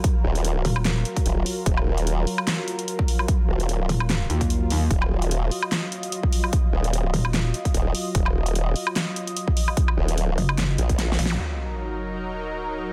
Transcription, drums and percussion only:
0.04 kick, closed hi-hat
0.35 closed hi-hat
0.45 closed hi-hat
0.65 open hi-hat
0.76 low woodblock
0.85 snare, clap, closed hi-hat
1.05 closed hi-hat
1.16 kick, closed hi-hat
1.26 closed hi-hat
1.46 open hi-hat
1.66 kick, closed hi-hat
1.77 low woodblock
1.98 closed hi-hat
2.07 closed hi-hat
2.27 open hi-hat
2.38 low woodblock
2.47 snare, clap, closed hi-hat
2.68 closed hi-hat
2.79 closed hi-hat
2.88 closed hi-hat
2.99 kick
3.08 open hi-hat
3.19 low woodblock
3.28 kick, closed hi-hat
3.60 closed hi-hat
3.69 closed hi-hat
3.89 open hi-hat
4.00 low woodblock
4.10 snare, clap, closed hi-hat
4.30 closed hi-hat
4.41 kick, closed hi-hat
4.50 closed hi-hat
4.70 open hi-hat
4.91 kick, closed hi-hat
5.02 low woodblock
5.22 closed hi-hat
5.31 closed hi-hat
5.51 open hi-hat
5.63 low woodblock
5.72 snare, clap, closed hi-hat
5.92 closed hi-hat
6.03 closed hi-hat
6.12 closed hi-hat
6.23 kick
6.33 open hi-hat
6.44 low woodblock
6.53 kick, closed hi-hat
6.84 closed hi-hat
6.93 closed hi-hat
7.14 open hi-hat
7.25 low woodblock
7.34 snare, clap, closed hi-hat
7.54 closed hi-hat
7.65 kick, closed hi-hat
7.74 closed hi-hat
7.95 open hi-hat
8.15 kick, closed hi-hat
8.26 low woodblock
8.46 closed hi-hat
8.55 closed hi-hat
8.76 open hi-hat
8.87 low woodblock
8.96 snare, clap, closed hi-hat
9.16 closed hi-hat
9.27 closed hi-hat
9.37 closed hi-hat
9.48 kick
9.57 open hi-hat
9.68 low woodblock
9.77 kick, closed hi-hat
9.88 low woodblock
10.08 closed hi-hat
10.18 closed hi-hat
10.38 open hi-hat
10.49 low woodblock
10.58 snare, clap, closed hi-hat
10.78 closed hi-hat
10.89 kick, closed hi-hat
10.99 snare, closed hi-hat
11.12 snare
11.19 open hi-hat
11.26 snare

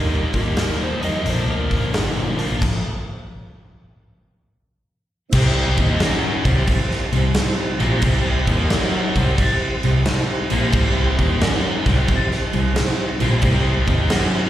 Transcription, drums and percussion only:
0.34 kick, open hi-hat
0.57 snare, open hi-hat
1.03 open hi-hat
1.26 open hi-hat
1.71 kick, open hi-hat
1.94 snare, open hi-hat
2.39 open hi-hat
2.62 kick, crash
5.32 kick, crash
5.77 kick, crash
6.00 snare, crash
6.45 kick, crash
6.67 kick, crash
6.91 snare
7.13 crash
7.34 snare, crash
7.80 crash
8.02 kick, crash
8.47 kick, crash
8.70 snare, crash
9.16 kick, crash
9.38 kick, crash
9.83 crash
10.05 snare, crash
10.50 crash
10.72 kick, crash
11.19 kick, crash
11.41 snare, crash
11.86 kick, snare, crash
12.08 kick, crash
12.31 snare
12.53 crash
12.76 snare, crash
13.20 crash
13.42 kick, crash
13.87 kick, crash
14.10 snare, crash

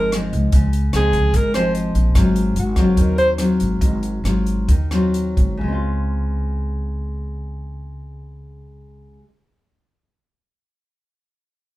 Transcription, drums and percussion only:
0.12 cross-stick, closed hi-hat
0.33 closed hi-hat
0.52 kick, closed hi-hat
0.73 closed hi-hat
0.93 cross-stick, closed hi-hat
1.13 kick, closed hi-hat
1.34 kick, closed hi-hat
1.54 cross-stick, closed hi-hat
1.75 closed hi-hat
1.95 closed hi-hat
2.15 kick, cross-stick, closed hi-hat
2.36 closed hi-hat
2.56 closed hi-hat
2.76 kick, cross-stick, closed hi-hat
2.97 kick, closed hi-hat
3.18 closed hi-hat
3.38 cross-stick, closed hi-hat
3.60 closed hi-hat
3.81 kick, closed hi-hat
4.03 closed hi-hat
4.25 cross-stick, closed hi-hat
4.46 closed hi-hat
4.69 kick, closed hi-hat
4.91 cross-stick, closed hi-hat
5.14 closed hi-hat
5.37 kick, closed hi-hat

